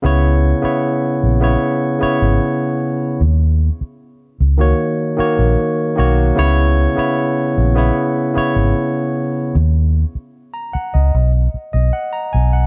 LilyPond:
<<
  \new Staff \with { instrumentName = "Tine electric piano" } { \time 4/4 \key cis \dorian \tempo 4 = 76 <cis b e' cis''>8 r16 <cis b e' cis''>8. r16 <cis b e' cis''>8 r16 <cis b e' cis''>4~ <cis b e' cis''>16 r16 | r4. r16 <dis ais fis' cis''>8 r16 <dis ais fis' cis''>8. r16 <dis ais fis' cis''>16 r16 | <cis b e' cis''>8 r16 <cis b e' cis''>8. r16 <cis b e' cis''>8 r16 <cis b e' cis''>4~ <cis b e' cis''>16 r16 | r4 r16 ais''16 fis''16 dis''8 r8 dis''16 fis''16 ais''16 gis''16 fis''16 | }
  \new Staff \with { instrumentName = "Fingered electric bass" } { \clef bass \time 4/4 \key cis \dorian cis,8. r8. ais,,8 r8. gis,,16 r4 | dis,8. r8. cis,8 r8. ais,,16 r8 b,,8 | cis,8. r8. ais,,8 r8. gis,,16 r4 | dis,8. r4 cis,16 b,,8 r16 b,,16 r8 b,,8 | }
>>